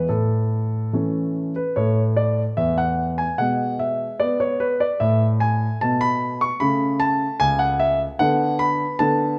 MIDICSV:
0, 0, Header, 1, 2, 480
1, 0, Start_track
1, 0, Key_signature, 3, "major"
1, 0, Tempo, 836820
1, 60, Time_signature, 2, 2, 24, 8
1, 1020, Tempo, 813008
1, 2460, Tempo, 796813
1, 5575, End_track
2, 0, Start_track
2, 0, Title_t, "Grand piano"
2, 0, Program_c, 0, 0
2, 50, Note_on_c, 0, 69, 59
2, 53, Note_on_c, 0, 45, 47
2, 525, Note_off_c, 0, 45, 0
2, 535, Note_on_c, 0, 52, 39
2, 535, Note_on_c, 0, 57, 36
2, 540, Note_on_c, 0, 61, 43
2, 755, Note_off_c, 0, 69, 0
2, 881, Note_off_c, 0, 52, 0
2, 881, Note_off_c, 0, 57, 0
2, 884, Note_off_c, 0, 61, 0
2, 894, Note_on_c, 0, 71, 61
2, 1009, Note_on_c, 0, 73, 63
2, 1013, Note_on_c, 0, 45, 55
2, 1013, Note_on_c, 0, 57, 38
2, 1016, Note_off_c, 0, 71, 0
2, 1156, Note_off_c, 0, 73, 0
2, 1248, Note_on_c, 0, 74, 66
2, 1396, Note_off_c, 0, 74, 0
2, 1400, Note_off_c, 0, 45, 0
2, 1487, Note_on_c, 0, 76, 76
2, 1491, Note_on_c, 0, 40, 55
2, 1610, Note_on_c, 0, 78, 76
2, 1614, Note_off_c, 0, 76, 0
2, 1757, Note_off_c, 0, 78, 0
2, 1847, Note_on_c, 0, 80, 73
2, 1879, Note_off_c, 0, 40, 0
2, 1953, Note_off_c, 0, 57, 0
2, 1967, Note_on_c, 0, 78, 73
2, 1970, Note_on_c, 0, 47, 52
2, 1972, Note_on_c, 0, 56, 38
2, 1974, Note_off_c, 0, 80, 0
2, 2210, Note_on_c, 0, 76, 69
2, 2214, Note_off_c, 0, 78, 0
2, 2358, Note_off_c, 0, 47, 0
2, 2431, Note_off_c, 0, 76, 0
2, 2447, Note_on_c, 0, 74, 73
2, 2452, Note_on_c, 0, 59, 55
2, 2571, Note_on_c, 0, 73, 69
2, 2575, Note_off_c, 0, 74, 0
2, 2691, Note_on_c, 0, 71, 74
2, 2697, Note_off_c, 0, 73, 0
2, 2813, Note_on_c, 0, 74, 68
2, 2817, Note_off_c, 0, 71, 0
2, 2842, Note_off_c, 0, 59, 0
2, 2915, Note_off_c, 0, 56, 0
2, 2932, Note_on_c, 0, 76, 74
2, 2935, Note_on_c, 0, 45, 56
2, 2937, Note_on_c, 0, 57, 41
2, 2938, Note_off_c, 0, 74, 0
2, 3080, Note_off_c, 0, 76, 0
2, 3175, Note_on_c, 0, 80, 79
2, 3326, Note_off_c, 0, 45, 0
2, 3398, Note_off_c, 0, 80, 0
2, 3421, Note_on_c, 0, 81, 79
2, 3426, Note_on_c, 0, 47, 56
2, 3538, Note_on_c, 0, 83, 90
2, 3546, Note_off_c, 0, 81, 0
2, 3782, Note_on_c, 0, 85, 78
2, 3785, Note_off_c, 0, 83, 0
2, 3813, Note_off_c, 0, 47, 0
2, 3883, Note_off_c, 0, 57, 0
2, 3896, Note_on_c, 0, 83, 83
2, 3902, Note_on_c, 0, 49, 61
2, 3902, Note_on_c, 0, 57, 43
2, 3906, Note_off_c, 0, 85, 0
2, 4134, Note_on_c, 0, 81, 89
2, 4140, Note_off_c, 0, 83, 0
2, 4283, Note_off_c, 0, 49, 0
2, 4375, Note_on_c, 0, 80, 93
2, 4376, Note_off_c, 0, 81, 0
2, 4379, Note_on_c, 0, 37, 59
2, 4491, Note_on_c, 0, 78, 89
2, 4497, Note_off_c, 0, 80, 0
2, 4615, Note_off_c, 0, 78, 0
2, 4616, Note_on_c, 0, 76, 85
2, 4737, Note_off_c, 0, 76, 0
2, 4761, Note_off_c, 0, 37, 0
2, 4831, Note_off_c, 0, 57, 0
2, 4855, Note_on_c, 0, 78, 90
2, 4859, Note_on_c, 0, 59, 49
2, 4862, Note_on_c, 0, 50, 69
2, 5095, Note_on_c, 0, 83, 90
2, 5097, Note_off_c, 0, 78, 0
2, 5246, Note_off_c, 0, 50, 0
2, 5314, Note_off_c, 0, 83, 0
2, 5316, Note_off_c, 0, 59, 0
2, 5336, Note_on_c, 0, 81, 89
2, 5340, Note_on_c, 0, 59, 44
2, 5342, Note_on_c, 0, 50, 69
2, 5554, Note_off_c, 0, 81, 0
2, 5575, Note_off_c, 0, 50, 0
2, 5575, Note_off_c, 0, 59, 0
2, 5575, End_track
0, 0, End_of_file